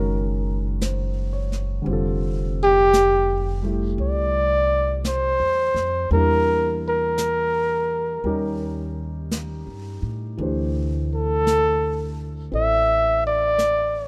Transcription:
Already playing: F#1 D#3 G#3 C#4 F#4 A#4
0.81 C5, brush sweep, snare, hi-hat pedal
1.33 C#5
1.52 snare
1.82 D3 G3
1.86 F1 C4, brush sweep
1.90 F4 A4
2.63 G4
2.93 brush sweep, snare, hi-hat pedal
3.62 G3 A3 E4 G4
3.98 C2 D5, brush sweep
5.04 C5, brush sweep, snare, hi-hat pedal
5.40 E2
5.74 F2, snare
6.11 E2 G3 A#3 D4 A#4, brush sweep
6.15 E4 A#4
6.88 A#4
7.18 brush sweep, snare, hi-hat pedal
8.24 D#2 G3 C#4 D#4 G4 A#4, brush sweep
9.31 brush sweep, snare, hi-hat pedal
9.67 G2
10.02 A2
10.37 D2 E3 A3 D4 G4, brush sweep
10.43 C5
11.14 A4
11.47 brush sweep, snare, hi-hat pedal
12.52 A1 C4 E4 A4 D5 E5, brush sweep
13.27 D5
13.59 brush sweep, snare, hi-hat pedal

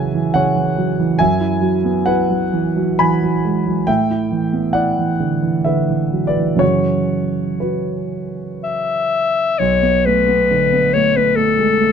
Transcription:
Already playing: F#2 C#3 E3 F#3 C#4 E5 F#5 G#5 A5
0.14 E3
0.34 C#3 C#5 F#5
0.56 E3
0.77 F#3
0.99 E3
1.19 F#2 E5 G#5
1.40 E4
1.61 F#3
1.85 B3
2.06 E4 B4 F#5
2.29 F#3
2.53 E3
2.77 F#3
2.99 E3 G#5 B5
3.23 F#3
3.45 G#3
3.66 F#3
3.87 A2 E5 G5
4.10 E4
4.32 E3
4.53 B3
4.73 E4 D5 F#5
4.98 E3
5.20 D3
5.42 E3
5.65 D3 B4 E5
5.89 E3
6.12 F#3
6.27 B4 D5
6.37 E3
6.55 F#2 C#3 E3 C#4 C#5
6.61 F#4
7.60 F#4 B4
8.64 E5
9.59 B1 C#5
9.82 B3
10.06 A3 B4
10.28 B3
10.51 D3
10.72 B3
10.93 A3 C#5
11.16 B3 B4
11.36 A3 A4
11.59 G#3
11.81 A3

